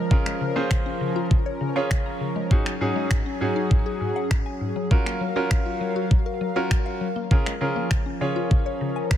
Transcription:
Already playing: analog synth pad F3 C#4 A#4
0.11 synth arpeggio sound C#3, grand piano C#4 F4 G#4 A#4, kick
0.26 synth arpeggio sound G#3, finger snap
0.41 synth arpeggio sound C#3
0.56 synth arpeggio sound A#3, grand piano C#4 F4 G#4 C5
0.71 synth arpeggio sound C#3, finger snap, kick
0.86 synth arpeggio sound C#4
1.01 synth arpeggio sound C#3
1.16 synth arpeggio sound F4
1.31 synth arpeggio sound C#3, kick
1.46 synth arpeggio sound C#5
1.61 synth arpeggio sound C#3
1.76 grand piano C#4 F4 G#4 C#5, synth arpeggio sound G#5
1.91 synth arpeggio sound C#3, finger snap, kick
2.06 synth arpeggio sound A#5
2.21 synth arpeggio sound C#3
2.36 synth arpeggio sound G#3
2.51 synth arpeggio sound G#2, analog synth pad F#3 G#4, grand piano C#4 D#4 F#4 G#4, kick
2.66 synth arpeggio sound F#3, finger snap
2.81 synth arpeggio sound G#2, grand piano C#4 D#4 F#4 G#4
2.96 synth arpeggio sound G#3
3.11 synth arpeggio sound G#2, finger snap, kick
3.26 synth arpeggio sound C#4
3.41 synth arpeggio sound G#2, grand piano C#4 D#4 F#4 G#4
3.56 synth arpeggio sound D#4
3.71 synth arpeggio sound G#2, kick
3.86 synth arpeggio sound G#4
4.01 synth arpeggio sound G#2
4.16 synth arpeggio sound F#5
4.31 synth arpeggio sound G#2, finger snap, kick
4.46 synth arpeggio sound G#5
4.61 synth arpeggio sound G#2
4.76 synth arpeggio sound F#3
4.91 synth arpeggio sound F#3, analog synth pad F#3 A#4 F5, grand piano C#4 F4 F#4 A#4, kick
5.06 synth arpeggio sound A#3, finger snap
5.21 synth arpeggio sound F#3
5.36 synth arpeggio sound C#4, grand piano C#4 F4 F#4 A#4
5.51 synth arpeggio sound F#3, finger snap, kick
5.66 synth arpeggio sound F4
5.81 synth arpeggio sound F#3
5.96 synth arpeggio sound F#4
6.11 synth arpeggio sound F#3, kick
6.26 synth arpeggio sound A#4
6.41 synth arpeggio sound F#3
6.56 grand piano C#4 F4 F#4 A#4, synth arpeggio sound C#5
6.71 synth arpeggio sound F#3, finger snap, kick
6.86 synth arpeggio sound F5
7.01 synth arpeggio sound F#3
7.16 synth arpeggio sound A#3
7.31 synth arpeggio sound C#3, analog synth pad F3 C#4 A#4, grand piano C#4 F4 G#4 A#4, kick
7.46 synth arpeggio sound G#3, finger snap
7.61 synth arpeggio sound C#3, grand piano C#4 F4 G#4 A#4
7.76 synth arpeggio sound A#3
7.91 synth arpeggio sound C#3, finger snap, kick
8.06 synth arpeggio sound C#4
8.21 synth arpeggio sound C#3, grand piano C#4 F4 G#4 C#5
8.36 synth arpeggio sound F4
8.51 synth arpeggio sound C#3, kick
8.66 synth arpeggio sound C#5
8.81 synth arpeggio sound C#3
8.96 synth arpeggio sound G#5
9.11 synth arpeggio sound C#3, finger snap, kick

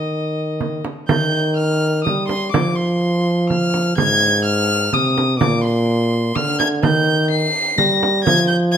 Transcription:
Already playing: trombone D#3, violin D#5
0.61 frame drum
0.85 frame drum
1.08 trombone D#3, violin G6, frame drum
1.56 violin F6
2.04 trombone G3, violin D#6, frame drum
2.28 violin C6, frame drum
2.52 trombone F3, violin D6, frame drum
2.76 violin C6
3.49 violin F6, frame drum
3.74 frame drum
3.97 trombone G#2, violin G#6, frame drum
4.44 violin F6
4.93 trombone C3, violin D#6, frame drum
5.18 frame drum
5.39 trombone A#2, violin D6, frame drum
5.63 violin C6
6.35 trombone D3, violin F6, frame drum
6.59 violin G#6, frame drum
6.83 trombone D#3, violin G6, frame drum
7.30 violin C7
7.77 trombone G3, violin A#6, frame drum
8.03 frame drum
8.24 trombone F3, violin G#6, frame drum
8.48 violin G6
8.72 violin G#6

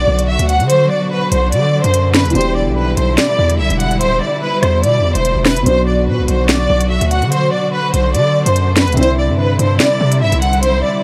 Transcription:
Already playing: grand piano B2 F#3 D4 F#4, string section B2 D3 F#3 F#4, violin section D5
0.07 808-style bass B1
0.19 closed hi-hat
0.29 violin section E5
0.39 808-style bass D2, closed hi-hat
0.49 violin section F#5, closed hi-hat
0.60 808-style bass D3, closed hi-hat
0.69 violin section C5, closed hi-hat
0.90 violin section D5
1.11 violin section B4
1.32 808-style bass B1, violin section C5, closed hi-hat
1.52 808-style bass D3, violin section D5, closed hi-hat
1.83 808-style bass F#2, violin section C5, closed hi-hat
1.94 closed hi-hat
2.14 violin section B4, snare, closed hi-hat
2.25 808-style bass D2, closed hi-hat
2.30 grand piano B2 E3, closed hi-hat
2.35 808-style bass E1, string section G3 E4, grand piano D4 G4, violin section C5, closed hi-hat
2.41 closed hi-hat
2.56 violin section D5
2.67 808-style bass B1
2.77 violin section B4
2.97 808-style bass B1, violin section C5, closed hi-hat
3.18 violin section D5, snare, closed hi-hat
3.39 808-style bass E2
3.50 closed hi-hat
3.59 808-style bass B1, violin section E5
3.70 808-style bass E1, closed hi-hat
3.80 violin section F#5, closed hi-hat
3.91 closed hi-hat
4.01 808-style bass D1, violin section C5, closed hi-hat
4.12 808-style bass E1
4.22 violin section D5
4.42 violin section B4
4.63 808-style bass E2, violin section C5, cross-stick, closed hi-hat
4.83 808-style bass B2, violin section D5, closed hi-hat
4.99 808-style bass E2
5.15 808-style bass E1, violin section C5, closed hi-hat
5.25 closed hi-hat
5.36 808-style bass E1
5.45 violin section B4, cross-stick, snare, open hi-hat
5.56 808-style bass G1, closed hi-hat
5.63 808-style bass B1, grand piano B2 F#3, string section D3 F#3 F#4, violin section C5, closed hi-hat
5.68 grand piano D4 F#4
5.87 violin section D5
6.08 808-style bass B2, violin section B4
6.19 808-style bass B1
6.28 808-style bass B1, violin section C5, closed hi-hat
6.49 violin section D5, snare, closed hi-hat
6.70 808-style bass B1
6.81 closed hi-hat
6.91 violin section E5
7.01 808-style bass D2, closed hi-hat
7.11 violin section F#5, closed hi-hat
7.22 808-style bass D3, closed hi-hat
7.32 violin section C5, closed hi-hat
7.52 violin section D5
7.73 violin section B4
7.93 808-style bass B1, violin section C5, closed hi-hat
8.14 808-style bass D3, violin section D5, closed hi-hat
8.46 808-style bass F#2, violin section C5, closed hi-hat
8.56 closed hi-hat
8.76 violin section B4, snare, closed hi-hat
8.87 808-style bass D2, closed hi-hat
8.92 grand piano C3 C4, closed hi-hat
8.97 808-style bass C2, string section G3 C4 E4, grand piano D4, violin section C5, closed hi-hat
9.01 grand piano E4, closed hi-hat
9.18 violin section D5
9.29 808-style bass G2
9.39 violin section B4
9.59 808-style bass G2, violin section C5, closed hi-hat
9.80 violin section D5, snare, closed hi-hat
10.01 808-style bass C3
10.12 closed hi-hat
10.21 808-style bass G2, violin section E5
10.32 808-style bass C2, closed hi-hat
10.42 violin section F#5, closed hi-hat
10.53 closed hi-hat
10.63 808-style bass B1, violin section C5, closed hi-hat
10.74 808-style bass C2
10.83 violin section D5

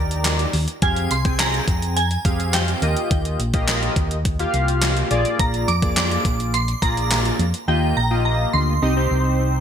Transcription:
Already playing: fingered electric bass D#2, analog polysynth D#4 G4 A#4 D5, synth bell A#5
0.11 closed hi-hat
0.25 snare, clap, closed hi-hat
0.39 closed hi-hat
0.53 fingered electric bass D#2, open hi-hat
0.68 closed hi-hat
0.82 fingered electric bass F2, analog polysynth C4 G4 G#4 F5, synth bell G#5, kick, closed hi-hat
0.96 closed hi-hat
1.11 fingered electric bass C2, synth bell C6, closed hi-hat
1.25 analog polysynth C4 G#4 G5 G#5, kick, closed hi-hat
1.39 synth bell A#5, snare, clap, closed hi-hat
1.54 closed hi-hat
1.68 fingered electric bass F2, kick, closed hi-hat
1.82 closed hi-hat
1.96 synth bell G#5, closed hi-hat
2.11 closed hi-hat
2.25 fingered electric bass F2, analog polysynth C4 G4 G#4 F5, kick, closed hi-hat
2.40 closed hi-hat
2.54 synth bell G5, snare, clap, closed hi-hat
2.68 closed hi-hat
2.82 fingered electric bass D#2, analog polysynth A#3 F4 G4 D#5, closed hi-hat
2.97 closed hi-hat
3.11 fingered electric bass D#2, kick, closed hi-hat
3.25 closed hi-hat
3.39 fingered electric bass A#1, closed hi-hat
3.54 analog polysynth A#3 F4 G4 D#5, kick, closed hi-hat
3.68 snare, clap, closed hi-hat
3.83 closed hi-hat
3.96 fingered electric bass D#2, kick, closed hi-hat
4.11 closed hi-hat
4.25 kick, closed hi-hat
4.39 analog polysynth A#3 F4 G4 F5, closed hi-hat
4.54 fingered electric bass C2, closed hi-hat
4.68 closed hi-hat
4.82 snare, clap, closed hi-hat
4.97 closed hi-hat
5.11 fingered electric bass A#1, analog polysynth A#3 F4 G#4 D5, closed hi-hat
5.25 closed hi-hat
5.39 fingered electric bass A#1, synth bell A#5, kick, closed hi-hat
5.54 closed hi-hat
5.68 fingered electric bass F2, synth bell D6, closed hi-hat
5.82 analog polysynth A#3 F4 G#4 D5, kick, closed hi-hat
5.97 synth bell D6, snare, clap, closed hi-hat
6.11 closed hi-hat
6.25 fingered electric bass A#1, kick, closed hi-hat
6.40 closed hi-hat
6.54 synth bell C6, closed hi-hat
6.68 closed hi-hat
6.82 fingered electric bass A#1, analog polysynth A#3 F4 G#4 D5, synth bell A#5, kick, closed hi-hat
6.97 closed hi-hat
7.11 snare, clap, closed hi-hat
7.25 closed hi-hat
7.39 fingered electric bass F2, closed hi-hat
7.54 closed hi-hat
7.68 fingered electric bass D#2, analog polysynth A#3 F4 G4 D#5, synth bell G5
7.97 fingered electric bass A#1, synth bell A#5
8.11 analog polysynth A#3 F4 G4 D#5
8.25 synth bell A#5
8.53 fingered electric bass D2, synth bell C6
8.82 fingered electric bass C2, analog polysynth C4 D#4 G4 D#5
8.96 analog polysynth C4 D#4 G4 C5
9.11 fingered electric bass C2

